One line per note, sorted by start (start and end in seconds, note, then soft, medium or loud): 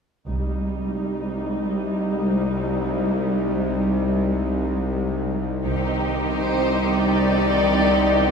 0.27 0.91 C2 soft
0.27 5.64 C2 soft
0.27 5.44 C2 soft
0.27 5.44 G3 soft
0.27 5.44 D#4 soft
5.66 8.31 C2 medium
5.66 6.31 C2 soft
5.66 8.31 C2 soft
5.66 8.31 D#3 soft
5.66 8.31 C4 soft
5.66 8.31 D#4 soft
5.66 8.31 G4 soft
6.35 6.98 C5 soft
7.03 8.31 D5 soft